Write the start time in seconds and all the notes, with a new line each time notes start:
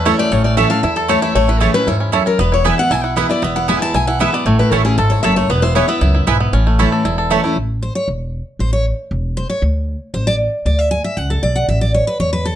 Already playing: E2 A3 C#4 A4
0.05 E3 A3 C#4 E4 C#5 A5
0.19 A3 D5
0.31 A1 A2 C#4 C#5
0.44 A3 D5
0.57 E3 A3 C#4 E4 C#5 E5 A5
0.70 C#4 E4 A4 F5
0.83 E2 E4 E5
0.96 A4
1.08 E3 A3 C#4 E4 C#5 A5
1.22 E4 E5
1.35 A1 A2 A3 C#5
1.48 E4 B4
1.60 E3 A3 C#4 E4 G#4 C#5 A5
1.74 C#4 E4 B4
1.87 E2 G#2 E4 C#5
2.00 C#4
2.12 F#2 A3 E4 C#5 A5
2.26 C#4 A#4
2.39 E1 E2 B3 B4
2.52 E4 C#5
2.64 E3 G#3 B3 E4 B4 E5 G#5
2.78 B3 E4 F#5
2.91 B1 B2 E4 G#5
3.04 E4 F#5
3.16 E3 G#3 B3 E4 B4 E5 G#5
3.29 B3 E4 D5
3.42 E1 E2 B3 E5
3.56 E4 F#5
3.68 E3 G#3 B3 E4 B4 G#5
3.82 E4 A5
3.94 B1 B2 E4 G#5
4.07 E4 F#5
4.19 E3 G#3 B3 E4 B4 E5 G#5
4.32 B3 E4 D5
4.46 A1 A2 A3 C#5
4.59 E4 B4
4.71 A1 E3 A3 C#4 E4 A4 C#5 A5
4.85 C#4 E4 G#4
4.97 G#1 G#2 A4
5.10 E4 C#5
5.23 F#1 F#2 A3 E4 A4 C#5 E5 A5
5.36 A3 C#5
5.49 E1 E2 B3 B4
5.62 E4 C5
5.75 E3 G#3 B3 E4 B4 C#5 G#5
5.88 B3 E4 E5
6.01 C#2 F#2 E4
6.15 E4
6.27 B1 G#2 B3 E4 B4 G#5
6.40 B3
6.53 A1 A2 C#4
6.67 A3
6.79 E3 A3 C#4 E4 C#5 A5
6.92 A4
7.05 E1 E2 E4
7.18 A4
7.30 E3 A3 C#4 E4 C#5 A5
7.44 C#4 E4
7.56 A1
7.83 C5
7.95 C#5
8.08 E1
8.59 A1 C5
8.73 C#5
9.11 E1
9.37 C5
9.50 C#5
9.62 D2
10.14 A1 C5
10.27 D5
10.66 D2 D5
10.79 E5
10.91 G#5
11.04 E5
11.17 C#2 F#5
11.30 A4
11.43 B1 D5
11.56 F#5
11.68 A1 E5
11.81 D5
11.94 C#5
12.07 B4
12.20 E2 C#5
12.33 B4
12.45 A4